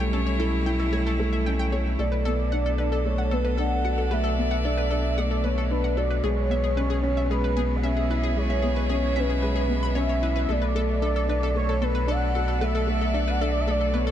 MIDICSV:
0, 0, Header, 1, 6, 480
1, 0, Start_track
1, 0, Key_signature, 2, "minor"
1, 0, Tempo, 530973
1, 1797, Time_signature, 4, 2, 24, 8
1, 12757, End_track
2, 0, Start_track
2, 0, Title_t, "Soft synth lead"
2, 0, Program_c, 0, 80
2, 1796, Note_on_c, 0, 74, 103
2, 2763, Note_on_c, 0, 73, 92
2, 2777, Note_off_c, 0, 74, 0
2, 3008, Note_on_c, 0, 71, 84
2, 3021, Note_off_c, 0, 73, 0
2, 3243, Note_off_c, 0, 71, 0
2, 3257, Note_on_c, 0, 78, 104
2, 3731, Note_on_c, 0, 76, 103
2, 3744, Note_off_c, 0, 78, 0
2, 4691, Note_on_c, 0, 74, 96
2, 4704, Note_off_c, 0, 76, 0
2, 4931, Note_on_c, 0, 73, 86
2, 4944, Note_off_c, 0, 74, 0
2, 5161, Note_on_c, 0, 71, 89
2, 5174, Note_off_c, 0, 73, 0
2, 5394, Note_on_c, 0, 74, 88
2, 5408, Note_off_c, 0, 71, 0
2, 5634, Note_on_c, 0, 73, 109
2, 5648, Note_off_c, 0, 74, 0
2, 6591, Note_off_c, 0, 73, 0
2, 6596, Note_on_c, 0, 71, 105
2, 7013, Note_on_c, 0, 78, 76
2, 7026, Note_off_c, 0, 71, 0
2, 7089, Note_on_c, 0, 76, 102
2, 7103, Note_off_c, 0, 78, 0
2, 7577, Note_on_c, 0, 73, 95
2, 7591, Note_off_c, 0, 76, 0
2, 8047, Note_off_c, 0, 73, 0
2, 8069, Note_on_c, 0, 73, 104
2, 8308, Note_on_c, 0, 71, 98
2, 8322, Note_off_c, 0, 73, 0
2, 9017, Note_on_c, 0, 76, 100
2, 9031, Note_off_c, 0, 71, 0
2, 9506, Note_on_c, 0, 74, 110
2, 9519, Note_off_c, 0, 76, 0
2, 10452, Note_off_c, 0, 74, 0
2, 10459, Note_on_c, 0, 73, 100
2, 10697, Note_on_c, 0, 71, 91
2, 10711, Note_off_c, 0, 73, 0
2, 10939, Note_on_c, 0, 78, 110
2, 10953, Note_off_c, 0, 71, 0
2, 11419, Note_on_c, 0, 76, 105
2, 11433, Note_off_c, 0, 78, 0
2, 12024, Note_on_c, 0, 78, 97
2, 12038, Note_off_c, 0, 76, 0
2, 12120, Note_on_c, 0, 76, 91
2, 12134, Note_off_c, 0, 78, 0
2, 12210, Note_on_c, 0, 74, 95
2, 12223, Note_off_c, 0, 76, 0
2, 12293, Note_on_c, 0, 76, 99
2, 12307, Note_off_c, 0, 74, 0
2, 12384, Note_on_c, 0, 74, 105
2, 12398, Note_off_c, 0, 76, 0
2, 12621, Note_on_c, 0, 73, 95
2, 12635, Note_off_c, 0, 74, 0
2, 12757, Note_off_c, 0, 73, 0
2, 12757, End_track
3, 0, Start_track
3, 0, Title_t, "Synth arpeggio sound"
3, 0, Program_c, 1, 84
3, 118, Note_on_c, 1, 69, 76
3, 173, Note_off_c, 1, 69, 0
3, 240, Note_on_c, 1, 73, 77
3, 272, Note_off_c, 1, 73, 0
3, 358, Note_on_c, 1, 69, 103
3, 414, Note_off_c, 1, 69, 0
3, 599, Note_on_c, 1, 79, 81
3, 631, Note_off_c, 1, 79, 0
3, 720, Note_on_c, 1, 69, 75
3, 774, Note_off_c, 1, 69, 0
3, 838, Note_on_c, 1, 73, 88
3, 871, Note_off_c, 1, 73, 0
3, 963, Note_on_c, 1, 69, 95
3, 1016, Note_off_c, 1, 69, 0
3, 1199, Note_on_c, 1, 76, 83
3, 1254, Note_off_c, 1, 76, 0
3, 1323, Note_on_c, 1, 79, 85
3, 1376, Note_off_c, 1, 79, 0
3, 1441, Note_on_c, 1, 79, 106
3, 1495, Note_off_c, 1, 79, 0
3, 1558, Note_on_c, 1, 73, 77
3, 1613, Note_off_c, 1, 73, 0
3, 1800, Note_on_c, 1, 69, 87
3, 1854, Note_off_c, 1, 69, 0
3, 1914, Note_on_c, 1, 71, 77
3, 1949, Note_off_c, 1, 71, 0
3, 2037, Note_on_c, 1, 69, 113
3, 2093, Note_off_c, 1, 69, 0
3, 2279, Note_on_c, 1, 78, 85
3, 2311, Note_off_c, 1, 78, 0
3, 2404, Note_on_c, 1, 69, 84
3, 2457, Note_off_c, 1, 69, 0
3, 2516, Note_on_c, 1, 71, 80
3, 2550, Note_off_c, 1, 71, 0
3, 2640, Note_on_c, 1, 69, 100
3, 2694, Note_off_c, 1, 69, 0
3, 2877, Note_on_c, 1, 78, 74
3, 2911, Note_off_c, 1, 78, 0
3, 2995, Note_on_c, 1, 69, 78
3, 3052, Note_off_c, 1, 69, 0
3, 3115, Note_on_c, 1, 71, 80
3, 3149, Note_off_c, 1, 71, 0
3, 3232, Note_on_c, 1, 69, 100
3, 3290, Note_off_c, 1, 69, 0
3, 3478, Note_on_c, 1, 78, 83
3, 3511, Note_off_c, 1, 78, 0
3, 3598, Note_on_c, 1, 69, 75
3, 3653, Note_off_c, 1, 69, 0
3, 3715, Note_on_c, 1, 71, 85
3, 3750, Note_off_c, 1, 71, 0
3, 3831, Note_on_c, 1, 69, 102
3, 3890, Note_off_c, 1, 69, 0
3, 4077, Note_on_c, 1, 78, 84
3, 4111, Note_off_c, 1, 78, 0
3, 4203, Note_on_c, 1, 69, 84
3, 4256, Note_off_c, 1, 69, 0
3, 4317, Note_on_c, 1, 71, 79
3, 4350, Note_off_c, 1, 71, 0
3, 4435, Note_on_c, 1, 69, 101
3, 4492, Note_off_c, 1, 69, 0
3, 4680, Note_on_c, 1, 78, 89
3, 4712, Note_off_c, 1, 78, 0
3, 4800, Note_on_c, 1, 69, 75
3, 4854, Note_off_c, 1, 69, 0
3, 4916, Note_on_c, 1, 71, 80
3, 4950, Note_off_c, 1, 71, 0
3, 5043, Note_on_c, 1, 69, 99
3, 5096, Note_off_c, 1, 69, 0
3, 5280, Note_on_c, 1, 78, 77
3, 5312, Note_off_c, 1, 78, 0
3, 5398, Note_on_c, 1, 69, 80
3, 5453, Note_off_c, 1, 69, 0
3, 5519, Note_on_c, 1, 71, 69
3, 5552, Note_off_c, 1, 71, 0
3, 5638, Note_on_c, 1, 68, 100
3, 5693, Note_off_c, 1, 68, 0
3, 5886, Note_on_c, 1, 76, 81
3, 5915, Note_off_c, 1, 76, 0
3, 6000, Note_on_c, 1, 68, 81
3, 6054, Note_off_c, 1, 68, 0
3, 6122, Note_on_c, 1, 71, 84
3, 6153, Note_off_c, 1, 71, 0
3, 6238, Note_on_c, 1, 68, 110
3, 6293, Note_off_c, 1, 68, 0
3, 6483, Note_on_c, 1, 76, 78
3, 6513, Note_off_c, 1, 76, 0
3, 6608, Note_on_c, 1, 68, 89
3, 6658, Note_off_c, 1, 68, 0
3, 6726, Note_on_c, 1, 71, 78
3, 6755, Note_off_c, 1, 71, 0
3, 6840, Note_on_c, 1, 68, 109
3, 6894, Note_off_c, 1, 68, 0
3, 7082, Note_on_c, 1, 76, 91
3, 7113, Note_off_c, 1, 76, 0
3, 7202, Note_on_c, 1, 68, 80
3, 7255, Note_off_c, 1, 68, 0
3, 7327, Note_on_c, 1, 71, 79
3, 7356, Note_off_c, 1, 71, 0
3, 7444, Note_on_c, 1, 68, 96
3, 7496, Note_off_c, 1, 68, 0
3, 7683, Note_on_c, 1, 76, 82
3, 7714, Note_off_c, 1, 76, 0
3, 7796, Note_on_c, 1, 68, 82
3, 7852, Note_off_c, 1, 68, 0
3, 7921, Note_on_c, 1, 71, 80
3, 7953, Note_off_c, 1, 71, 0
3, 8042, Note_on_c, 1, 68, 101
3, 8095, Note_off_c, 1, 68, 0
3, 8279, Note_on_c, 1, 76, 85
3, 8312, Note_off_c, 1, 76, 0
3, 8406, Note_on_c, 1, 68, 78
3, 8457, Note_off_c, 1, 68, 0
3, 8519, Note_on_c, 1, 71, 85
3, 8552, Note_off_c, 1, 71, 0
3, 8638, Note_on_c, 1, 68, 96
3, 8694, Note_off_c, 1, 68, 0
3, 8884, Note_on_c, 1, 83, 106
3, 8914, Note_off_c, 1, 83, 0
3, 8997, Note_on_c, 1, 73, 89
3, 9053, Note_off_c, 1, 73, 0
3, 9125, Note_on_c, 1, 73, 82
3, 9155, Note_off_c, 1, 73, 0
3, 9247, Note_on_c, 1, 71, 84
3, 9275, Note_off_c, 1, 71, 0
3, 9363, Note_on_c, 1, 71, 98
3, 9416, Note_off_c, 1, 71, 0
3, 9481, Note_on_c, 1, 69, 83
3, 9535, Note_off_c, 1, 69, 0
3, 9598, Note_on_c, 1, 71, 72
3, 9631, Note_off_c, 1, 71, 0
3, 9726, Note_on_c, 1, 69, 103
3, 9777, Note_off_c, 1, 69, 0
3, 9965, Note_on_c, 1, 69, 89
3, 10017, Note_off_c, 1, 69, 0
3, 10088, Note_on_c, 1, 69, 83
3, 10138, Note_off_c, 1, 69, 0
3, 10210, Note_on_c, 1, 71, 78
3, 10237, Note_off_c, 1, 71, 0
3, 10335, Note_on_c, 1, 69, 99
3, 10382, Note_off_c, 1, 69, 0
3, 10567, Note_on_c, 1, 69, 80
3, 10618, Note_off_c, 1, 69, 0
3, 10684, Note_on_c, 1, 69, 77
3, 10736, Note_off_c, 1, 69, 0
3, 10801, Note_on_c, 1, 71, 79
3, 10833, Note_off_c, 1, 71, 0
3, 10923, Note_on_c, 1, 69, 109
3, 10976, Note_off_c, 1, 69, 0
3, 11166, Note_on_c, 1, 69, 75
3, 11217, Note_off_c, 1, 69, 0
3, 11281, Note_on_c, 1, 69, 74
3, 11335, Note_off_c, 1, 69, 0
3, 11402, Note_on_c, 1, 71, 90
3, 11433, Note_off_c, 1, 71, 0
3, 11524, Note_on_c, 1, 69, 98
3, 11576, Note_off_c, 1, 69, 0
3, 11764, Note_on_c, 1, 69, 78
3, 11816, Note_off_c, 1, 69, 0
3, 11882, Note_on_c, 1, 69, 79
3, 11935, Note_off_c, 1, 69, 0
3, 12002, Note_on_c, 1, 71, 83
3, 12033, Note_off_c, 1, 71, 0
3, 12126, Note_on_c, 1, 69, 111
3, 12177, Note_off_c, 1, 69, 0
3, 12364, Note_on_c, 1, 69, 88
3, 12416, Note_off_c, 1, 69, 0
3, 12482, Note_on_c, 1, 69, 75
3, 12535, Note_off_c, 1, 69, 0
3, 12599, Note_on_c, 1, 71, 81
3, 12632, Note_off_c, 1, 71, 0
3, 12718, Note_on_c, 1, 69, 103
3, 12757, Note_off_c, 1, 69, 0
3, 12757, End_track
4, 0, Start_track
4, 0, Title_t, "String quartet"
4, 0, Program_c, 2, 48
4, 0, Note_on_c, 2, 47, 75
4, 0, Note_on_c, 2, 55, 92
4, 0, Note_on_c, 2, 64, 87
4, 0, Note_on_c, 2, 73, 74
4, 1779, Note_off_c, 2, 47, 0
4, 1790, Note_on_c, 2, 47, 84
4, 1792, Note_off_c, 2, 55, 0
4, 1800, Note_off_c, 2, 73, 0
4, 2049, Note_on_c, 2, 69, 77
4, 2370, Note_on_c, 2, 59, 85
4, 2824, Note_off_c, 2, 64, 0
4, 3523, Note_on_c, 2, 74, 89
4, 5631, Note_off_c, 2, 69, 0
4, 5636, Note_off_c, 2, 74, 0
4, 7116, Note_on_c, 2, 68, 68
4, 7370, Note_on_c, 2, 76, 76
4, 9480, Note_off_c, 2, 68, 0
4, 9931, Note_on_c, 2, 69, 70
4, 10174, Note_off_c, 2, 76, 0
4, 10910, Note_on_c, 2, 74, 85
4, 12757, Note_off_c, 2, 47, 0
4, 12757, Note_off_c, 2, 59, 0
4, 12757, Note_off_c, 2, 69, 0
4, 12757, Note_off_c, 2, 74, 0
4, 12757, End_track
5, 0, Start_track
5, 0, Title_t, "Felt piano"
5, 0, Program_c, 3, 0
5, 0, Control_c, 3, 64, 127
5, 0, Note_on_c, 3, 57, 87
5, 0, Note_on_c, 3, 61, 81
5, 0, Note_on_c, 3, 64, 103
5, 0, Note_on_c, 3, 67, 77
5, 105, Note_off_c, 3, 57, 0
5, 118, Note_off_c, 3, 61, 0
5, 118, Note_on_c, 3, 61, 78
5, 346, Note_off_c, 3, 61, 0
5, 353, Note_off_c, 3, 64, 0
5, 353, Note_on_c, 3, 64, 96
5, 583, Note_off_c, 3, 64, 0
5, 601, Note_on_c, 3, 64, 93
5, 827, Note_off_c, 3, 64, 0
5, 837, Note_on_c, 3, 57, 75
5, 1065, Note_off_c, 3, 57, 0
5, 1082, Note_on_c, 3, 57, 105
5, 1217, Note_off_c, 3, 57, 0
5, 1330, Note_on_c, 3, 61, 77
5, 1552, Note_off_c, 3, 61, 0
5, 1563, Note_on_c, 3, 57, 68
5, 1788, Note_off_c, 3, 57, 0
5, 1801, Note_on_c, 3, 57, 78
5, 1807, Control_c, 3, 64, 0
5, 1816, Note_off_c, 3, 67, 0
5, 1973, Control_c, 3, 64, 127
5, 2027, Note_off_c, 3, 57, 0
5, 2044, Note_on_c, 3, 59, 80
5, 2269, Note_off_c, 3, 59, 0
5, 2286, Note_on_c, 3, 62, 100
5, 2508, Note_off_c, 3, 62, 0
5, 2522, Note_on_c, 3, 62, 100
5, 2748, Note_off_c, 3, 62, 0
5, 2762, Note_on_c, 3, 57, 82
5, 2987, Note_off_c, 3, 57, 0
5, 3003, Note_on_c, 3, 59, 78
5, 3228, Note_off_c, 3, 59, 0
5, 3244, Note_on_c, 3, 62, 95
5, 3469, Note_off_c, 3, 62, 0
5, 3478, Note_on_c, 3, 66, 72
5, 3615, Note_off_c, 3, 66, 0
5, 3720, Note_on_c, 3, 57, 84
5, 3947, Note_off_c, 3, 57, 0
5, 3961, Note_on_c, 3, 59, 85
5, 4187, Note_off_c, 3, 59, 0
5, 4204, Note_on_c, 3, 62, 107
5, 4428, Note_off_c, 3, 62, 0
5, 4441, Note_on_c, 3, 62, 97
5, 4667, Note_off_c, 3, 62, 0
5, 4682, Note_on_c, 3, 57, 80
5, 4908, Note_off_c, 3, 57, 0
5, 4923, Note_on_c, 3, 59, 77
5, 5148, Note_off_c, 3, 59, 0
5, 5162, Note_on_c, 3, 62, 96
5, 5388, Note_off_c, 3, 62, 0
5, 5395, Note_on_c, 3, 66, 77
5, 5533, Note_off_c, 3, 66, 0
5, 5639, Note_on_c, 3, 56, 86
5, 5650, Control_c, 3, 64, 0
5, 5798, Control_c, 3, 64, 127
5, 5866, Note_off_c, 3, 56, 0
5, 5876, Note_on_c, 3, 59, 83
5, 6105, Note_off_c, 3, 59, 0
5, 6117, Note_on_c, 3, 61, 99
5, 6345, Note_off_c, 3, 61, 0
5, 6358, Note_on_c, 3, 61, 101
5, 6586, Note_off_c, 3, 61, 0
5, 6601, Note_on_c, 3, 56, 86
5, 6827, Note_off_c, 3, 56, 0
5, 6842, Note_on_c, 3, 59, 78
5, 7068, Note_off_c, 3, 59, 0
5, 7086, Note_on_c, 3, 61, 97
5, 7309, Note_off_c, 3, 61, 0
5, 7323, Note_on_c, 3, 64, 77
5, 7457, Note_off_c, 3, 64, 0
5, 7563, Note_on_c, 3, 56, 82
5, 7788, Note_off_c, 3, 56, 0
5, 7808, Note_on_c, 3, 59, 82
5, 8031, Note_off_c, 3, 59, 0
5, 8045, Note_on_c, 3, 61, 100
5, 8269, Note_off_c, 3, 61, 0
5, 8285, Note_on_c, 3, 61, 102
5, 8509, Note_off_c, 3, 61, 0
5, 8519, Note_on_c, 3, 56, 82
5, 8746, Note_off_c, 3, 56, 0
5, 8758, Note_on_c, 3, 59, 83
5, 8986, Note_off_c, 3, 59, 0
5, 9005, Note_on_c, 3, 61, 106
5, 9229, Note_off_c, 3, 61, 0
5, 9243, Note_on_c, 3, 64, 75
5, 9377, Note_off_c, 3, 64, 0
5, 9490, Control_c, 3, 64, 0
5, 9490, Note_on_c, 3, 57, 82
5, 9663, Control_c, 3, 64, 127
5, 9708, Note_off_c, 3, 57, 0
5, 9721, Note_on_c, 3, 57, 78
5, 9856, Note_off_c, 3, 57, 0
5, 9961, Note_on_c, 3, 62, 97
5, 10187, Note_off_c, 3, 62, 0
5, 10204, Note_on_c, 3, 62, 102
5, 10429, Note_off_c, 3, 62, 0
5, 10446, Note_on_c, 3, 57, 78
5, 10670, Note_off_c, 3, 57, 0
5, 10678, Note_on_c, 3, 59, 77
5, 10906, Note_off_c, 3, 59, 0
5, 10916, Note_on_c, 3, 62, 101
5, 11145, Note_off_c, 3, 62, 0
5, 11171, Note_on_c, 3, 66, 73
5, 11301, Note_off_c, 3, 66, 0
5, 11403, Note_on_c, 3, 57, 90
5, 11625, Note_off_c, 3, 57, 0
5, 11638, Note_on_c, 3, 57, 81
5, 11775, Note_off_c, 3, 57, 0
5, 11878, Note_on_c, 3, 62, 109
5, 12106, Note_off_c, 3, 62, 0
5, 12122, Note_on_c, 3, 62, 103
5, 12347, Note_off_c, 3, 62, 0
5, 12359, Note_on_c, 3, 57, 80
5, 12586, Note_off_c, 3, 57, 0
5, 12600, Note_on_c, 3, 59, 82
5, 12757, Note_off_c, 3, 59, 0
5, 12757, End_track
6, 0, Start_track
6, 0, Title_t, "Sub bass"
6, 0, Program_c, 4, 38
6, 0, Note_on_c, 4, 35, 89
6, 1774, Note_off_c, 4, 35, 0
6, 1797, Note_on_c, 4, 35, 84
6, 5613, Note_off_c, 4, 35, 0
6, 5634, Note_on_c, 4, 35, 91
6, 9452, Note_off_c, 4, 35, 0
6, 9479, Note_on_c, 4, 35, 90
6, 12757, Note_off_c, 4, 35, 0
6, 12757, End_track
0, 0, End_of_file